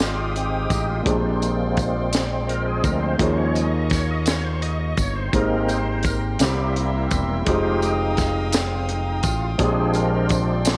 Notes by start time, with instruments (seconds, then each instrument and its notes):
Already playing: fingered electric bass G#1, grand piano G#2 G#3 D#4 F4 G4 C5, tonewheel organ G#3 G4, string section F5 G5 D#6
0.01 tonewheel organ F4, snare
0.36 tonewheel organ C4, closed hi-hat
0.70 fingered electric bass A1, tonewheel organ D#4, kick, closed hi-hat, tambourine
0.90 tonewheel organ F4
1.03 fingered electric bass A#1, grand piano A#2 A#3 D4 G4 G#4, string section D5 C6, kick, closed hi-hat
1.07 tonewheel organ F3 G#3 C4 D4, grand piano C5
1.42 tonewheel organ A#3, closed hi-hat, tambourine
1.77 kick, closed hi-hat, tambourine
2.13 snare, closed hi-hat, tambourine
2.48 tonewheel organ A#4, closed hi-hat
2.68 tonewheel organ G#4
2.84 fingered electric bass D2, tonewheel organ A#4, kick, closed hi-hat, tambourine
3.02 tonewheel organ C5
3.18 fingered electric bass D#2, grand piano D#3 A#3 D#4 F4 G#4 C#5, tonewheel organ F3 G#3 C#4, string section D#5 F5 C#6, kick, closed hi-hat
3.38 tonewheel organ C#5
3.55 tonewheel organ D#5, closed hi-hat, tambourine
3.74 tonewheel organ D#5
3.90 tonewheel organ C#5, kick, snare, closed hi-hat, tambourine
4.11 tonewheel organ D#5
4.26 tonewheel organ C#5, snare, closed hi-hat, tambourine
4.44 tonewheel organ C5
4.62 tonewheel organ D#5, closed hi-hat
4.80 tonewheel organ D#5
4.97 fingered electric bass G1, tonewheel organ C#5, kick, closed hi-hat, tambourine
5.16 tonewheel organ C5
5.33 fingered electric bass G#1, grand piano G#2 A#3 D#4 G4 G#4 C5, tonewheel organ G#3 A#3 C4 A#4, string section G5 A#5 C6, kick, closed hi-hat
5.68 tonewheel organ C5, closed hi-hat, tambourine
6.03 tonewheel organ A#4, kick, closed hi-hat, tambourine
6.39 fingered electric bass C2, grand piano C3 A#3 C4 E4 G4 C5, tonewheel organ G3 A#3 E4 G4, string section E5 A#5 C6, snare, closed hi-hat, tambourine
6.76 tonewheel organ E4, closed hi-hat
7.10 fingered electric bass E1, tonewheel organ E4, kick, closed hi-hat, tambourine
7.45 fingered electric bass F1, grand piano G#3 D#4 F4 G4, tonewheel organ G#3 D#4 F4 G4, string section F5 D#6, kick, closed hi-hat
7.50 grand piano C5
7.82 tonewheel organ D#4, closed hi-hat, tambourine
8.17 tonewheel organ D#4, kick, snare, closed hi-hat, tambourine
8.53 tonewheel organ C4, snare, closed hi-hat, tambourine
8.89 tonewheel organ D#4, closed hi-hat
9.23 fingered electric bass A1, tonewheel organ F4, kick, closed hi-hat, tambourine
9.42 tonewheel organ F4
9.58 fingered electric bass A#1, grand piano A#2 A#3 D4 G4 G#4 C5, tonewheel organ F3 G#3 C4 D4 G#4, string section D5 C6, kick, closed hi-hat
9.94 tonewheel organ A#4, closed hi-hat, tambourine
10.29 kick, closed hi-hat, tambourine
10.65 tonewheel organ F3 G#3 C4 D4, snare, closed hi-hat, tambourine